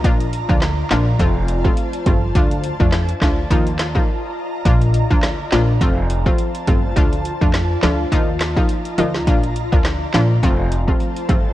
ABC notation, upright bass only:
X:1
M:4/4
L:1/16
Q:"Swing 16ths" 1/4=104
K:Bb
V:1 name="Upright bass" clef=bass
B,,,3 D,,3 B,,,2 F,,,4 z2 G,,,2 | D,,3 F,,3 D,,2 E,,4 z4 | B,,,3 D,,3 B,,,2 F,,,4 z2 G,,,2 | D,,3 F,,3 D,,2 E,,4 z2 D,,2 |
B,,,3 D,,3 B,,,2 F,,,4 z2 G,,,2 |]